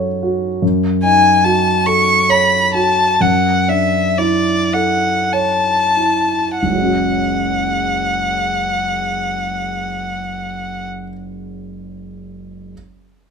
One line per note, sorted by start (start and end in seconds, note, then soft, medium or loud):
0.00 0.58 F#2 soft
0.00 0.65 D#4 soft
0.00 0.23 F#4 soft
0.00 0.64 A4 soft
0.00 0.46 C#5 soft
0.23 0.62 F#4 soft
0.62 3.16 F#2 soft
1.03 1.69 D#4 soft
1.03 1.46 G#5 medium
1.44 2.12 F#4 soft
1.44 1.88 A5 soft
1.86 2.56 A4 soft
1.86 2.32 C#6 medium
2.29 3.01 C#5 soft
2.29 2.74 B5 medium
2.74 3.20 F#4 soft
2.74 3.23 A5 medium
3.21 6.59 F#2 soft
3.21 3.70 F#5 soft
3.68 4.51 D4 soft
3.68 4.20 E5 soft
4.18 5.09 E4 soft
4.18 4.75 D5 soft
4.73 5.70 A4 soft
4.73 5.34 F#5 soft
5.33 6.37 C#5 soft
5.33 6.59 A5 soft
5.97 6.63 E4 soft
6.60 10.90 F#1 soft
6.60 10.87 F#5 soft
6.67 10.94 C#2 soft
6.71 10.98 F#3 soft
6.76 11.03 G#3 soft
6.80 11.07 C#4 soft
6.84 11.11 F#4 soft